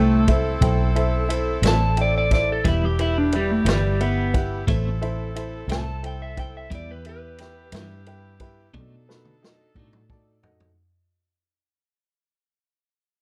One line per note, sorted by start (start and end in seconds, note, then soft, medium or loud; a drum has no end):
0.00 0.59 C2 loud
0.00 0.29 A3 loud
0.00 2.47 C4 medium
0.00 0.20 E4 medium
0.00 8.70 E4 medium
0.00 0.20 A4 medium
0.00 2.47 A4 medium
0.00 0.20 C5 medium
0.00 0.20 G5 medium
0.28 0.54 E4 medium
0.28 0.54 A4 medium
0.28 0.54 C5 medium
0.28 0.54 E5 medium
0.28 kick medium
0.28 ride medium
0.61 1.60 B1 medium
0.61 0.87 E4 medium
0.61 0.87 A4 medium
0.61 0.87 C5 medium
0.61 0.87 G5 medium
0.61 kick loud
0.61 ride medium
0.95 1.21 E4 medium
0.95 1.21 A4 medium
0.95 1.21 C5 medium
0.95 1.21 E5 medium
0.95 ride medium
1.29 1.55 E4 medium
1.29 1.55 A4 medium
1.29 1.55 C5 medium
1.29 1.55 E5 medium
1.29 ride medium
1.62 2.62 A1 medium
1.62 1.85 A2 medium
1.62 1.84 A3 medium
1.62 1.84 C4 medium
1.62 1.84 E4 medium
1.62 1.89 E4 medium
1.62 1.89 A4 medium
1.62 1.89 C5 medium
1.62 1.89 D5 medium
1.62 snare loud
1.62 ride medium
1.68 1.99 A5 loud
1.97 2.23 E4 medium
1.97 2.23 A4 medium
1.97 2.23 C5 medium
1.97 2.23 G5 medium
1.97 ride medium
2.01 2.16 D5 medium
2.18 2.33 D5 loud
2.31 2.57 E4 medium
2.31 2.57 A4 medium
2.31 2.57 C5 medium
2.31 2.57 D5 medium
2.31 2.49 D5 loud
2.31 kick medium
2.31 snare soft
2.31 ride medium
2.52 2.67 A4 medium
2.64 3.64 E1 medium
2.64 2.85 E3 medium
2.64 2.86 G3 medium
2.64 4.66 B3 medium
2.64 2.86 B3 medium
2.64 2.91 E4 medium
2.64 2.86 E4 medium
2.64 4.66 G4 loud
2.64 2.91 G4 medium
2.64 2.91 B4 medium
2.64 2.90 E5 medium
2.64 kick loud
2.64 ride medium
2.68 2.83 E4 medium
2.85 3.00 G4 medium
2.99 3.25 E4 medium
2.99 3.16 E4 medium
2.99 3.25 G4 medium
2.99 3.25 B4 medium
2.99 3.25 E5 medium
2.99 ride medium
3.18 3.34 D4 medium
3.32 3.51 G3 loud
3.32 3.59 E4 medium
3.32 3.59 G4 medium
3.32 3.59 B4 medium
3.32 3.59 D5 medium
3.32 ride medium
3.51 3.67 A3 medium
3.65 4.65 G1 loud
3.65 3.87 E3 medium
3.65 3.87 G3 medium
3.65 4.00 G3 loud
3.65 3.87 B3 medium
3.65 3.87 E4 medium
3.65 3.92 E4 medium
3.65 3.92 G4 medium
3.65 3.92 B4 medium
3.65 3.92 D5 medium
3.65 snare loud
3.65 ride medium
4.00 4.34 B3 loud
4.00 4.26 E4 medium
4.00 4.26 G4 medium
4.00 4.26 B4 medium
4.00 4.26 E5 medium
4.00 ride medium
4.34 4.60 E4 medium
4.34 4.60 G4 medium
4.34 4.60 B4 medium
4.34 4.60 F#5 medium
4.34 kick medium
4.34 ride medium
4.67 5.66 A1 medium
4.67 4.89 A2 loud
4.67 4.89 A3 loud
4.67 6.69 C4 medium
4.67 4.89 C4 loud
4.67 4.94 E4 medium
4.67 4.89 E4 loud
4.67 6.69 A4 medium
4.67 4.94 A4 medium
4.67 4.94 C5 medium
4.67 4.94 E5 medium
4.67 kick loud
4.67 ride medium
5.02 5.28 E4 medium
5.02 5.27 A4 medium
5.02 5.27 C5 medium
5.02 5.28 E5 medium
5.02 ride medium
5.36 5.61 E4 medium
5.36 5.62 A4 medium
5.36 5.62 C5 medium
5.36 5.62 E5 medium
5.36 ride medium
5.68 6.67 C2 loud
5.68 5.91 A2 medium
5.68 5.91 A3 medium
5.68 5.91 C4 medium
5.68 5.95 E4 medium
5.68 5.90 E4 medium
5.68 5.95 A4 soft
5.68 5.95 C5 medium
5.68 5.95 E5 medium
5.68 6.04 A5 loud
5.68 ride medium
5.72 snare loud
6.03 6.29 E4 medium
6.03 6.29 A4 medium
6.03 6.29 C5 medium
6.03 6.29 G5 medium
6.03 6.22 G5 medium
6.03 ride medium
6.22 6.38 E5 loud
6.37 6.63 E4 medium
6.37 6.63 A4 medium
6.37 6.63 C5 medium
6.37 6.63 G5 medium
6.37 6.55 G5 medium
6.37 kick medium
6.37 ride medium
6.57 6.72 E5 medium
6.70 7.70 E2 loud
6.70 6.91 E3 medium
6.70 6.92 G3 medium
6.70 6.92 B3 medium
6.70 8.73 B3 medium
6.70 6.97 E4 medium
6.70 6.92 E4 medium
6.70 6.97 G4 medium
6.70 8.73 G4 loud
6.70 6.97 B4 medium
6.70 6.97 E5 medium
6.70 kick loud
6.70 ride medium
6.75 6.90 D5 loud
6.91 7.06 B4 loud
7.05 7.31 E4 medium
7.05 7.31 G4 medium
7.05 7.31 B4 medium
7.05 7.31 E5 medium
7.05 ride medium
7.09 8.39 B4 loud
7.38 7.65 E4 medium
7.38 7.65 G4 medium
7.38 7.65 B4 medium
7.38 7.65 G5 medium
7.38 snare soft
7.38 ride medium
7.72 8.71 G2 loud
7.72 7.94 E3 medium
7.72 7.94 G3 medium
7.72 7.94 B3 medium
7.72 7.93 E4 medium
7.72 7.98 E4 medium
7.72 7.98 G4 medium
7.72 7.98 B4 medium
7.72 7.98 E5 medium
7.72 snare loud
7.72 ride loud
8.06 8.32 E4 medium
8.06 8.33 G4 medium
8.06 8.33 B4 medium
8.06 8.33 G5 medium
8.06 ride medium
8.40 8.67 E4 medium
8.40 8.66 G4 medium
8.40 8.66 B4 medium
8.40 8.66 G5 medium
8.40 kick medium
8.40 ride medium
8.73 8.95 B2 medium
8.73 9.73 B2 medium
8.73 8.95 A3 loud
8.73 10.75 D4 medium
8.73 8.95 D4 loud
8.73 10.75 D#4 medium
8.73 8.95 D#4 medium
8.73 9.01 D#4 medium
8.73 9.01 F#4 medium
8.73 10.75 A4 medium
8.73 9.01 A4 medium
8.73 9.01 D5 medium
8.73 kick loud
8.73 high tom medium
9.09 9.34 D#4 medium
9.09 9.34 F#4 medium
9.09 9.34 A4 medium
9.09 9.34 B4 medium
9.09 snare medium
9.25 mid tom medium
9.42 9.68 D#4 medium
9.42 9.68 F#4 medium
9.42 9.68 A4 medium
9.42 9.68 D#5 medium
9.42 snare medium
9.75 10.74 A2 medium
9.75 9.98 B2 medium
9.75 9.98 A3 medium
9.75 9.98 D4 medium
9.75 10.02 D#4 medium
9.75 9.97 D#4 medium
9.75 10.02 F#4 medium
9.75 10.02 A4 medium
9.75 10.02 D5 medium
9.75 kick medium
9.93 mid tom medium
10.10 10.35 D#4 medium
10.10 10.35 F#4 medium
10.10 10.36 A4 medium
10.10 10.35 D5 medium
10.10 10.42 A5 medium
10.10 kick loud
10.43 10.69 D#4 medium
10.43 10.69 F#4 medium
10.43 10.69 A4 medium
10.43 10.69 D#5 medium
10.43 10.75 F#5 medium
10.43 floor tom medium
10.60 floor tom medium